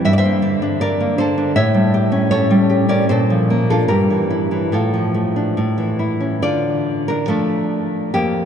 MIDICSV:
0, 0, Header, 1, 2, 480
1, 0, Start_track
1, 0, Key_signature, -1, "minor"
1, 0, Tempo, 754717
1, 42, Time_signature, 2, 2, 24, 8
1, 1482, Tempo, 784314
1, 2442, Tempo, 852273
1, 5006, End_track
2, 0, Start_track
2, 0, Title_t, "Nylon-string guitar"
2, 0, Program_c, 0, 24
2, 30, Note_on_c, 0, 43, 65
2, 33, Note_on_c, 0, 76, 99
2, 76, Note_off_c, 0, 76, 0
2, 84, Note_on_c, 0, 74, 87
2, 111, Note_off_c, 0, 74, 0
2, 114, Note_on_c, 0, 76, 93
2, 122, Note_on_c, 0, 72, 77
2, 159, Note_on_c, 0, 58, 49
2, 269, Note_on_c, 0, 50, 60
2, 394, Note_on_c, 0, 62, 57
2, 495, Note_off_c, 0, 72, 0
2, 501, Note_off_c, 0, 76, 0
2, 515, Note_on_c, 0, 74, 101
2, 521, Note_on_c, 0, 70, 74
2, 631, Note_off_c, 0, 58, 0
2, 639, Note_on_c, 0, 58, 54
2, 741, Note_off_c, 0, 70, 0
2, 745, Note_off_c, 0, 50, 0
2, 745, Note_off_c, 0, 74, 0
2, 752, Note_on_c, 0, 50, 58
2, 752, Note_on_c, 0, 72, 87
2, 765, Note_on_c, 0, 69, 74
2, 867, Note_off_c, 0, 62, 0
2, 875, Note_on_c, 0, 62, 54
2, 964, Note_off_c, 0, 43, 0
2, 983, Note_off_c, 0, 69, 0
2, 983, Note_off_c, 0, 72, 0
2, 987, Note_off_c, 0, 58, 0
2, 990, Note_on_c, 0, 45, 65
2, 991, Note_on_c, 0, 76, 96
2, 993, Note_off_c, 0, 50, 0
2, 995, Note_off_c, 0, 62, 0
2, 996, Note_on_c, 0, 73, 77
2, 1109, Note_on_c, 0, 55, 48
2, 1234, Note_on_c, 0, 67, 61
2, 1347, Note_on_c, 0, 61, 58
2, 1456, Note_off_c, 0, 73, 0
2, 1459, Note_off_c, 0, 76, 0
2, 1468, Note_on_c, 0, 73, 98
2, 1475, Note_on_c, 0, 69, 72
2, 1582, Note_off_c, 0, 55, 0
2, 1589, Note_on_c, 0, 55, 57
2, 1699, Note_off_c, 0, 67, 0
2, 1706, Note_on_c, 0, 67, 60
2, 1808, Note_off_c, 0, 69, 0
2, 1815, Note_off_c, 0, 61, 0
2, 1815, Note_off_c, 0, 73, 0
2, 1822, Note_on_c, 0, 61, 51
2, 1826, Note_on_c, 0, 74, 84
2, 1831, Note_on_c, 0, 70, 65
2, 1928, Note_off_c, 0, 45, 0
2, 1944, Note_off_c, 0, 70, 0
2, 1946, Note_off_c, 0, 74, 0
2, 1948, Note_off_c, 0, 61, 0
2, 1948, Note_on_c, 0, 72, 95
2, 1950, Note_off_c, 0, 55, 0
2, 1950, Note_off_c, 0, 67, 0
2, 1953, Note_on_c, 0, 46, 66
2, 1961, Note_on_c, 0, 69, 71
2, 2078, Note_on_c, 0, 53, 48
2, 2199, Note_on_c, 0, 58, 55
2, 2297, Note_off_c, 0, 69, 0
2, 2300, Note_off_c, 0, 72, 0
2, 2321, Note_on_c, 0, 62, 54
2, 2322, Note_on_c, 0, 69, 82
2, 2332, Note_on_c, 0, 65, 62
2, 2426, Note_off_c, 0, 46, 0
2, 2430, Note_off_c, 0, 69, 0
2, 2432, Note_on_c, 0, 70, 79
2, 2436, Note_on_c, 0, 43, 62
2, 2440, Note_off_c, 0, 65, 0
2, 2443, Note_off_c, 0, 53, 0
2, 2443, Note_off_c, 0, 58, 0
2, 2443, Note_off_c, 0, 62, 0
2, 2443, Note_on_c, 0, 67, 62
2, 2557, Note_on_c, 0, 52, 44
2, 2670, Note_on_c, 0, 64, 51
2, 2781, Note_off_c, 0, 52, 0
2, 2787, Note_on_c, 0, 52, 43
2, 2892, Note_off_c, 0, 70, 0
2, 2894, Note_off_c, 0, 67, 0
2, 2899, Note_off_c, 0, 43, 0
2, 2906, Note_on_c, 0, 45, 55
2, 2910, Note_on_c, 0, 69, 64
2, 2913, Note_off_c, 0, 52, 0
2, 2913, Note_off_c, 0, 64, 0
2, 2916, Note_on_c, 0, 65, 53
2, 3026, Note_on_c, 0, 53, 44
2, 3143, Note_on_c, 0, 57, 44
2, 3263, Note_off_c, 0, 65, 0
2, 3266, Note_on_c, 0, 62, 47
2, 3375, Note_off_c, 0, 69, 0
2, 3377, Note_off_c, 0, 45, 0
2, 3384, Note_on_c, 0, 45, 57
2, 3390, Note_off_c, 0, 57, 0
2, 3391, Note_off_c, 0, 62, 0
2, 3392, Note_off_c, 0, 53, 0
2, 3500, Note_on_c, 0, 52, 44
2, 3621, Note_on_c, 0, 64, 43
2, 3741, Note_on_c, 0, 61, 42
2, 3853, Note_off_c, 0, 45, 0
2, 3861, Note_off_c, 0, 52, 0
2, 3863, Note_off_c, 0, 64, 0
2, 3864, Note_on_c, 0, 50, 61
2, 3865, Note_on_c, 0, 74, 89
2, 3868, Note_off_c, 0, 61, 0
2, 3872, Note_on_c, 0, 65, 66
2, 4211, Note_off_c, 0, 65, 0
2, 4216, Note_off_c, 0, 74, 0
2, 4234, Note_on_c, 0, 70, 79
2, 4243, Note_on_c, 0, 62, 62
2, 4335, Note_off_c, 0, 50, 0
2, 4344, Note_on_c, 0, 53, 49
2, 4346, Note_on_c, 0, 69, 75
2, 4349, Note_off_c, 0, 62, 0
2, 4351, Note_on_c, 0, 57, 52
2, 4354, Note_off_c, 0, 70, 0
2, 4355, Note_on_c, 0, 62, 55
2, 4812, Note_off_c, 0, 53, 0
2, 4815, Note_off_c, 0, 57, 0
2, 4815, Note_off_c, 0, 69, 0
2, 4817, Note_off_c, 0, 62, 0
2, 4829, Note_on_c, 0, 67, 82
2, 4832, Note_on_c, 0, 41, 63
2, 4833, Note_on_c, 0, 58, 62
2, 5006, Note_off_c, 0, 41, 0
2, 5006, Note_off_c, 0, 58, 0
2, 5006, Note_off_c, 0, 67, 0
2, 5006, End_track
0, 0, End_of_file